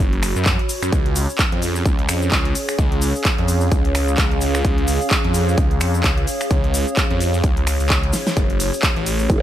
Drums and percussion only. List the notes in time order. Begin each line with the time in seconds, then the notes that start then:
0.00 cabasa
0.13 closed hi-hat
0.23 finger snap, open hi-hat, cabasa
0.36 closed hi-hat, cabasa
0.45 kick, clap, closed hi-hat, cabasa
0.59 closed hi-hat
0.69 open hi-hat, cabasa
0.83 finger snap, closed hi-hat, cabasa
0.93 kick, closed hi-hat, cabasa
1.06 closed hi-hat
1.16 open hi-hat, cabasa
1.29 cabasa
1.38 kick, clap, closed hi-hat, cabasa
1.52 closed hi-hat
1.62 open hi-hat, cabasa
1.76 cabasa
1.85 kick, closed hi-hat, cabasa
1.99 closed hi-hat
2.09 finger snap, open hi-hat, cabasa
2.22 closed hi-hat, cabasa
2.32 kick, clap, closed hi-hat, cabasa
2.45 closed hi-hat
2.55 open hi-hat, cabasa
2.69 finger snap, cabasa
2.79 kick, closed hi-hat, cabasa
2.92 closed hi-hat
3.02 open hi-hat, cabasa
3.16 cabasa
3.25 kick, clap, closed hi-hat, cabasa
3.38 closed hi-hat
3.48 open hi-hat, cabasa
3.61 cabasa
3.71 kick, closed hi-hat, cabasa
3.85 closed hi-hat
3.95 finger snap, open hi-hat, cabasa
4.08 cabasa
4.18 kick, clap, closed hi-hat, cabasa
4.31 closed hi-hat
4.41 open hi-hat, cabasa
4.55 finger snap, cabasa
4.65 kick, closed hi-hat, cabasa
4.78 closed hi-hat
4.88 open hi-hat, cabasa
5.01 cabasa
5.10 kick, clap, closed hi-hat, cabasa
5.25 closed hi-hat
5.34 open hi-hat, cabasa
5.49 cabasa
5.58 kick, closed hi-hat, cabasa
5.71 closed hi-hat
5.81 finger snap, open hi-hat, cabasa
5.94 closed hi-hat, cabasa
6.04 kick, clap, closed hi-hat, cabasa
6.17 closed hi-hat
6.27 open hi-hat, cabasa
6.41 finger snap, cabasa
6.50 kick, closed hi-hat, cabasa
6.64 closed hi-hat
6.74 open hi-hat, cabasa
6.87 closed hi-hat, cabasa
6.97 kick, clap, closed hi-hat, cabasa
7.11 closed hi-hat
7.20 open hi-hat, cabasa
7.34 cabasa
7.44 kick, closed hi-hat, cabasa
7.57 closed hi-hat
7.67 finger snap, open hi-hat, cabasa
7.80 open hi-hat, cabasa
7.90 kick, clap, closed hi-hat, cabasa
8.04 closed hi-hat
8.13 snare, open hi-hat, cabasa
8.27 snare, closed hi-hat, cabasa
8.37 kick, closed hi-hat, cabasa
8.50 closed hi-hat
8.60 open hi-hat, ride, cabasa
8.74 cabasa
8.83 kick, clap, closed hi-hat, cabasa
8.96 closed hi-hat
9.06 open hi-hat, ride, cabasa
9.19 cabasa
9.29 kick, closed hi-hat, cabasa